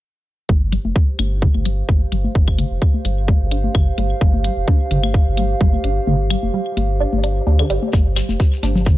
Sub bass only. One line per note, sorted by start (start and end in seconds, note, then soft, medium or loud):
0.49 0.78 G1 medium
0.85 0.92 F1 medium
1.19 1.47 G1 loud
1.55 1.82 G1 medium
1.89 2.04 G1 medium
2.12 2.27 G1 medium
2.35 2.64 G1 medium
2.71 2.78 F1 medium
3.05 3.33 G1 loud
3.41 3.68 G1 medium
3.75 3.90 G1 medium
3.98 4.13 G1 medium
4.21 4.50 G1 medium
4.57 4.64 F1 medium
4.91 5.19 G1 loud
5.27 5.54 G1 medium
5.61 5.76 G1 medium
5.84 5.99 G1 medium
6.07 6.36 G1 medium
6.43 6.50 F1 medium
6.77 7.05 G1 loud
7.13 7.40 G1 medium
7.47 7.62 D2 medium
7.70 7.78 G1 medium
7.93 8.22 G1 loud
8.29 8.36 F1 medium
8.63 8.92 G1 loud